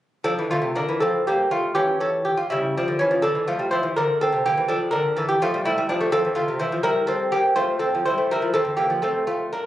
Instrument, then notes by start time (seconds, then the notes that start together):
lute
0.24 F3 D4 A4
0.39 E3
0.51 D3 A3 F4
0.62 C3
0.75 D3 D4 A#4
0.89 E3
1.00 F3 C4 A4
1.27 G3 A#3 G4
1.51 A3 F4
1.75 E3 C#4 G4
2.00 C#4 A4
2.25 G4
2.37 F4
2.50 C#3 G3 E4
2.77 F3 D4
2.88 D3
2.99 E3 C#4
3.11 F3
3.22 D3 D4 A4
3.35 E3
3.47 F3 A3 F4
3.59 G3
3.71 F3 E4 C5
3.83 E3
3.96 D3 D4 A#4
4.21 C4 A4
4.32 C3
4.46 D3 A#3 G4
4.57 E3
4.68 F3 D4 A4
4.91 D3 D4 A#4
5.16 E3 A4
5.29 G4
5.42 F3 A3 F4
5.54 G3
5.65 G3 A3 E4
5.78 G3
5.89 F3 D4
6.01 A3
6.12 F3 C4 A4
6.25 E3
6.35 D3 A3 F4
6.48 C3
6.59 E3 E4 C5
6.72 F3
6.83 G3 E4 A#4
7.07 C4 A4
7.32 A#3 G4
7.56 A3 F4 C5
7.79 C4 A4
7.95 F3
8.05 G3 E4 C5
8.18 A3
8.31 G3 E4 A#4
8.42 F3
8.54 E3 C4 A4
8.65 D3
8.77 E3 A#3 G4
8.90 F3
9.02 A3 C4 A4
9.27 A3 F4
9.53 D4 A#4